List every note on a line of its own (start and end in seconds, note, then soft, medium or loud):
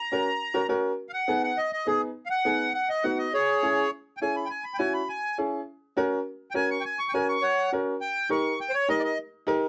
0.00 0.67 A#5 loud
0.12 0.27 C#4 medium
0.12 0.28 F#4 medium
0.12 0.28 A#4 medium
0.54 0.60 C#4 medium
0.54 0.60 F#4 medium
0.54 0.60 A#4 medium
0.69 0.90 C#4 medium
0.69 0.90 F#4 medium
0.69 0.90 A#4 loud
1.09 1.12 F5 medium
1.14 1.42 F#5 medium
1.28 1.49 B3 medium
1.28 1.49 D#4 medium
1.28 1.49 G#4 medium
1.44 1.58 F#5 medium
1.58 1.71 D#5 medium
1.73 1.87 D#5 medium
1.87 2.07 B3 medium
1.87 2.07 D#4 medium
1.87 2.01 G#4 medium
1.87 2.08 G#4 medium
2.26 2.28 F5 medium
2.30 2.73 F#5 loud
2.45 2.66 B3 medium
2.45 2.66 D#4 medium
2.45 2.66 G#4 medium
2.74 2.89 F#5 medium
2.89 3.04 D#5 medium
3.04 3.25 B3 medium
3.04 3.25 D#4 medium
3.04 3.25 F#4 medium
3.04 3.18 F#5 medium
3.19 3.33 D#5 medium
3.34 3.88 G#4 medium
3.34 3.91 C#5 loud
3.63 3.83 C#4 medium
3.63 3.84 E4 medium
3.63 3.84 G#4 medium
4.17 4.19 G5 medium
4.22 4.42 C#4 medium
4.22 4.42 E4 medium
4.22 4.42 G#4 medium
4.22 4.36 G#5 medium
4.36 4.50 B5 medium
4.46 4.48 G5 medium
4.50 4.65 G#5 medium
4.64 4.79 B5 medium
4.74 4.77 G5 medium
4.78 5.00 C#4 medium
4.78 5.00 E4 medium
4.78 5.00 F#4 medium
4.78 4.93 G#5 loud
4.94 5.08 B5 medium
5.09 5.38 G#5 medium
5.38 5.59 C#4 medium
5.38 5.59 E4 medium
5.38 5.59 G#4 medium
5.97 6.17 C#4 loud
5.97 6.18 F#4 medium
5.97 6.18 A#4 loud
6.51 6.75 C#4 medium
6.51 6.76 F#4 medium
6.51 6.53 G5 medium
6.55 6.76 A#4 medium
6.55 6.70 G#5 loud
6.70 6.85 C#6 medium
6.80 6.83 G5 medium
6.85 6.99 G#5 medium
6.99 7.13 C#6 medium
7.09 7.11 G5 medium
7.13 7.34 C#4 medium
7.13 7.35 F#4 medium
7.13 7.35 A#4 medium
7.13 7.28 G#5 loud
7.29 7.43 C#6 medium
7.42 7.70 C#5 medium
7.42 7.71 F#5 loud
7.72 7.93 C#4 medium
7.72 7.93 F#4 medium
7.72 7.93 A#4 medium
8.01 8.30 G5 loud
8.29 8.51 D#4 medium
8.29 8.51 G4 medium
8.29 8.51 A#4 medium
8.29 8.59 C#6 medium
8.61 8.75 G5 medium
8.69 8.72 C5 medium
8.74 8.89 C#5 loud
8.89 9.09 D#4 medium
8.89 9.09 G4 medium
8.89 9.10 A#4 medium
8.89 9.03 D#5 loud
8.99 9.02 D5 medium
9.04 9.18 D#5 medium
9.47 9.68 D#4 medium
9.47 9.68 G4 medium
9.47 9.68 A#4 loud